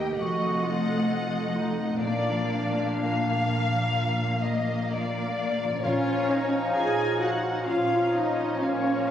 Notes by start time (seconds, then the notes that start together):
Already playing: D#2 D#3 A#3 D#4 G4 A#4 D#5 G5
0.00 A#3
0.19 F1 F2 F3 A3 F#4 D#5 F#5
0.42 C4
0.64 D#4 F4
0.86 F#4
1.09 A4
1.32 F#4
1.56 D#4
1.79 C4
2.02 A#1 A#2 A#3 D4 D5 F5
2.26 F3
2.50 D4
2.74 F4
2.98 A#4 F5
3.23 F4
3.47 D4
3.71 F3
3.95 A#2
4.19 D4
4.43 F3 D#5
4.67 F4
4.90 A#4 D5
5.14 F4
5.37 D4
5.60 F3
5.65 A#2
5.70 C#4
5.75 F4
5.79 A#4
5.83 A#1 A#2 F3 C#4 F4 C#5 F5 A#5
6.29 D#4 F5
6.75 A#1 G#4 F5 G#5
7.21 F#4 F5 F#5
7.67 A#1 F3 C#4 F4 C#5 F5 A#5
8.14 D#4 D#5 F5
8.59 A#1 F3 A#3 C#4 F4 C#5 F5 A#5
9.06 G#3 F5